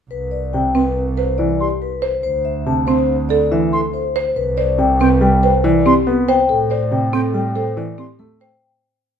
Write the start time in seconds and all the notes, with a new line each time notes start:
0.11 C2 B4
0.31 D5
0.53 C3 G5
0.75 C4 B4
1.17 B4 C5
1.38 E3 D5
1.61 G4 C6
1.82 B4
2.02 C5
2.23 D2 C5
2.45 E5
2.66 C3 A5
2.87 C4 C5
3.29 A4 D5
3.51 E3 E5
3.73 A4 C6
3.94 C5
4.16 C5
4.36 C2 B4
4.57 C5 D5
4.78 C3 G5
5.00 C4 B4 G5
5.21 G3 G5
5.43 B4 C5
5.64 E3 D5
5.85 C4 G4 C6
6.07 B3 B4
6.28 C5 G5
6.49 A2 A4
6.70 C5 D5
6.91 C3 G5
7.13 C4 A4 G5
7.34 G3 G5
7.56 A4 C5
7.77 E3 D5
7.98 C4 G4 C6
8.19 A3 A4
8.40 C5 G5